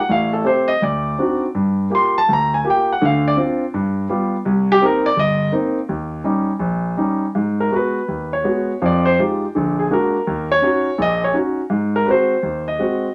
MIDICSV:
0, 0, Header, 1, 2, 480
1, 0, Start_track
1, 0, Tempo, 366972
1, 129, Time_signature, 4, 2, 24, 8
1, 3972, Tempo, 358423
1, 8292, Tempo, 364520
1, 17356, End_track
2, 0, Start_track
2, 0, Title_t, "Grand piano"
2, 0, Program_c, 0, 0
2, 117, Note_on_c, 0, 33, 61
2, 119, Note_on_c, 0, 45, 70
2, 149, Note_on_c, 0, 77, 79
2, 434, Note_on_c, 0, 69, 66
2, 437, Note_off_c, 0, 77, 0
2, 530, Note_off_c, 0, 33, 0
2, 531, Note_off_c, 0, 45, 0
2, 576, Note_on_c, 0, 57, 49
2, 577, Note_on_c, 0, 60, 41
2, 584, Note_on_c, 0, 67, 53
2, 594, Note_off_c, 0, 69, 0
2, 609, Note_on_c, 0, 72, 77
2, 887, Note_on_c, 0, 75, 100
2, 904, Note_off_c, 0, 72, 0
2, 913, Note_off_c, 0, 57, 0
2, 914, Note_off_c, 0, 60, 0
2, 917, Note_off_c, 0, 67, 0
2, 1060, Note_off_c, 0, 75, 0
2, 1069, Note_on_c, 0, 38, 61
2, 1091, Note_on_c, 0, 74, 81
2, 1493, Note_off_c, 0, 38, 0
2, 1548, Note_on_c, 0, 62, 38
2, 1549, Note_on_c, 0, 60, 44
2, 1556, Note_on_c, 0, 63, 39
2, 1560, Note_on_c, 0, 66, 47
2, 1833, Note_off_c, 0, 74, 0
2, 1888, Note_off_c, 0, 60, 0
2, 1888, Note_off_c, 0, 62, 0
2, 1892, Note_off_c, 0, 63, 0
2, 1894, Note_off_c, 0, 66, 0
2, 2024, Note_on_c, 0, 43, 64
2, 2450, Note_off_c, 0, 43, 0
2, 2489, Note_on_c, 0, 58, 50
2, 2500, Note_on_c, 0, 65, 41
2, 2503, Note_on_c, 0, 67, 54
2, 2549, Note_on_c, 0, 84, 86
2, 2840, Note_off_c, 0, 58, 0
2, 2844, Note_off_c, 0, 84, 0
2, 2845, Note_off_c, 0, 65, 0
2, 2847, Note_off_c, 0, 67, 0
2, 2850, Note_on_c, 0, 81, 98
2, 2988, Note_on_c, 0, 38, 64
2, 3009, Note_off_c, 0, 81, 0
2, 3050, Note_on_c, 0, 82, 93
2, 3325, Note_on_c, 0, 80, 78
2, 3335, Note_off_c, 0, 82, 0
2, 3415, Note_off_c, 0, 38, 0
2, 3459, Note_on_c, 0, 58, 49
2, 3459, Note_on_c, 0, 65, 49
2, 3468, Note_on_c, 0, 67, 57
2, 3487, Note_off_c, 0, 80, 0
2, 3532, Note_on_c, 0, 79, 81
2, 3805, Note_off_c, 0, 58, 0
2, 3805, Note_off_c, 0, 65, 0
2, 3809, Note_off_c, 0, 67, 0
2, 3816, Note_off_c, 0, 79, 0
2, 3826, Note_on_c, 0, 78, 82
2, 3942, Note_on_c, 0, 38, 67
2, 3943, Note_on_c, 0, 50, 77
2, 3977, Note_off_c, 0, 78, 0
2, 3991, Note_on_c, 0, 77, 77
2, 4288, Note_off_c, 0, 77, 0
2, 4293, Note_on_c, 0, 74, 96
2, 4374, Note_off_c, 0, 38, 0
2, 4375, Note_off_c, 0, 50, 0
2, 4392, Note_off_c, 0, 74, 0
2, 4415, Note_on_c, 0, 60, 53
2, 4421, Note_on_c, 0, 62, 45
2, 4427, Note_on_c, 0, 65, 60
2, 4765, Note_off_c, 0, 60, 0
2, 4768, Note_off_c, 0, 62, 0
2, 4771, Note_off_c, 0, 65, 0
2, 4913, Note_on_c, 0, 43, 73
2, 5338, Note_off_c, 0, 43, 0
2, 5386, Note_on_c, 0, 55, 61
2, 5394, Note_on_c, 0, 59, 47
2, 5397, Note_on_c, 0, 65, 55
2, 5728, Note_off_c, 0, 55, 0
2, 5732, Note_off_c, 0, 59, 0
2, 5734, Note_off_c, 0, 65, 0
2, 5870, Note_on_c, 0, 36, 76
2, 6223, Note_on_c, 0, 67, 109
2, 6292, Note_off_c, 0, 36, 0
2, 6357, Note_on_c, 0, 60, 50
2, 6359, Note_on_c, 0, 58, 50
2, 6364, Note_on_c, 0, 63, 67
2, 6374, Note_off_c, 0, 67, 0
2, 6411, Note_on_c, 0, 70, 90
2, 6681, Note_on_c, 0, 74, 107
2, 6691, Note_off_c, 0, 60, 0
2, 6692, Note_off_c, 0, 58, 0
2, 6692, Note_off_c, 0, 70, 0
2, 6695, Note_off_c, 0, 63, 0
2, 6822, Note_on_c, 0, 31, 69
2, 6843, Note_off_c, 0, 74, 0
2, 6861, Note_on_c, 0, 75, 104
2, 7248, Note_off_c, 0, 31, 0
2, 7300, Note_off_c, 0, 75, 0
2, 7301, Note_on_c, 0, 58, 56
2, 7308, Note_on_c, 0, 63, 63
2, 7311, Note_on_c, 0, 60, 52
2, 7643, Note_off_c, 0, 58, 0
2, 7646, Note_off_c, 0, 63, 0
2, 7647, Note_off_c, 0, 60, 0
2, 7789, Note_on_c, 0, 39, 68
2, 8215, Note_off_c, 0, 39, 0
2, 8263, Note_on_c, 0, 55, 60
2, 8269, Note_on_c, 0, 61, 50
2, 8272, Note_on_c, 0, 63, 59
2, 8605, Note_off_c, 0, 55, 0
2, 8608, Note_off_c, 0, 61, 0
2, 8610, Note_off_c, 0, 63, 0
2, 8728, Note_on_c, 0, 34, 68
2, 9170, Note_off_c, 0, 34, 0
2, 9226, Note_on_c, 0, 55, 54
2, 9235, Note_on_c, 0, 63, 62
2, 9238, Note_on_c, 0, 61, 49
2, 9580, Note_off_c, 0, 55, 0
2, 9585, Note_off_c, 0, 63, 0
2, 9586, Note_off_c, 0, 61, 0
2, 9726, Note_on_c, 0, 44, 66
2, 10059, Note_on_c, 0, 70, 77
2, 10155, Note_off_c, 0, 44, 0
2, 10204, Note_on_c, 0, 56, 48
2, 10206, Note_on_c, 0, 59, 42
2, 10215, Note_on_c, 0, 66, 50
2, 10225, Note_off_c, 0, 70, 0
2, 10263, Note_on_c, 0, 71, 74
2, 10550, Note_off_c, 0, 56, 0
2, 10551, Note_off_c, 0, 59, 0
2, 10555, Note_off_c, 0, 66, 0
2, 10687, Note_on_c, 0, 39, 58
2, 10993, Note_off_c, 0, 71, 0
2, 11016, Note_on_c, 0, 73, 69
2, 11118, Note_off_c, 0, 39, 0
2, 11159, Note_on_c, 0, 56, 47
2, 11166, Note_on_c, 0, 59, 47
2, 11169, Note_on_c, 0, 66, 52
2, 11508, Note_off_c, 0, 56, 0
2, 11512, Note_off_c, 0, 59, 0
2, 11513, Note_off_c, 0, 66, 0
2, 11625, Note_off_c, 0, 73, 0
2, 11655, Note_on_c, 0, 41, 67
2, 11658, Note_on_c, 0, 53, 67
2, 11709, Note_on_c, 0, 74, 86
2, 11969, Note_on_c, 0, 72, 94
2, 11996, Note_off_c, 0, 74, 0
2, 12079, Note_off_c, 0, 41, 0
2, 12080, Note_off_c, 0, 53, 0
2, 12140, Note_off_c, 0, 72, 0
2, 12144, Note_on_c, 0, 56, 52
2, 12146, Note_on_c, 0, 63, 41
2, 12150, Note_on_c, 0, 65, 48
2, 12155, Note_on_c, 0, 67, 57
2, 12475, Note_off_c, 0, 56, 0
2, 12476, Note_off_c, 0, 63, 0
2, 12478, Note_off_c, 0, 65, 0
2, 12481, Note_off_c, 0, 67, 0
2, 12622, Note_on_c, 0, 50, 67
2, 12632, Note_on_c, 0, 34, 69
2, 12940, Note_on_c, 0, 68, 63
2, 13033, Note_off_c, 0, 50, 0
2, 13039, Note_off_c, 0, 34, 0
2, 13091, Note_on_c, 0, 58, 44
2, 13093, Note_on_c, 0, 62, 50
2, 13094, Note_on_c, 0, 56, 51
2, 13095, Note_on_c, 0, 66, 49
2, 13097, Note_off_c, 0, 68, 0
2, 13124, Note_on_c, 0, 70, 75
2, 13420, Note_off_c, 0, 58, 0
2, 13421, Note_off_c, 0, 56, 0
2, 13421, Note_off_c, 0, 62, 0
2, 13422, Note_off_c, 0, 66, 0
2, 13567, Note_on_c, 0, 39, 75
2, 13841, Note_off_c, 0, 70, 0
2, 13892, Note_on_c, 0, 73, 103
2, 13980, Note_off_c, 0, 39, 0
2, 14031, Note_on_c, 0, 61, 49
2, 14037, Note_on_c, 0, 63, 42
2, 14047, Note_on_c, 0, 66, 52
2, 14364, Note_off_c, 0, 61, 0
2, 14367, Note_off_c, 0, 63, 0
2, 14372, Note_off_c, 0, 66, 0
2, 14481, Note_off_c, 0, 73, 0
2, 14506, Note_on_c, 0, 34, 69
2, 14509, Note_on_c, 0, 46, 63
2, 14557, Note_on_c, 0, 75, 101
2, 14839, Note_off_c, 0, 75, 0
2, 14851, Note_on_c, 0, 73, 78
2, 14924, Note_off_c, 0, 34, 0
2, 14925, Note_off_c, 0, 46, 0
2, 14973, Note_on_c, 0, 61, 51
2, 14982, Note_on_c, 0, 63, 45
2, 14987, Note_on_c, 0, 66, 50
2, 15002, Note_off_c, 0, 73, 0
2, 15312, Note_off_c, 0, 61, 0
2, 15317, Note_off_c, 0, 63, 0
2, 15319, Note_off_c, 0, 66, 0
2, 15451, Note_on_c, 0, 44, 70
2, 15792, Note_on_c, 0, 70, 89
2, 15875, Note_off_c, 0, 44, 0
2, 15922, Note_on_c, 0, 71, 56
2, 15940, Note_on_c, 0, 56, 46
2, 15950, Note_on_c, 0, 60, 43
2, 15951, Note_off_c, 0, 70, 0
2, 15958, Note_off_c, 0, 71, 0
2, 15958, Note_on_c, 0, 66, 53
2, 15990, Note_on_c, 0, 72, 76
2, 16277, Note_off_c, 0, 56, 0
2, 16282, Note_off_c, 0, 60, 0
2, 16286, Note_off_c, 0, 66, 0
2, 16408, Note_on_c, 0, 39, 59
2, 16715, Note_off_c, 0, 72, 0
2, 16741, Note_on_c, 0, 75, 76
2, 16840, Note_off_c, 0, 39, 0
2, 16888, Note_on_c, 0, 56, 44
2, 16896, Note_on_c, 0, 66, 48
2, 16898, Note_on_c, 0, 60, 42
2, 17242, Note_off_c, 0, 56, 0
2, 17246, Note_off_c, 0, 66, 0
2, 17247, Note_off_c, 0, 60, 0
2, 17356, Note_off_c, 0, 75, 0
2, 17356, End_track
0, 0, End_of_file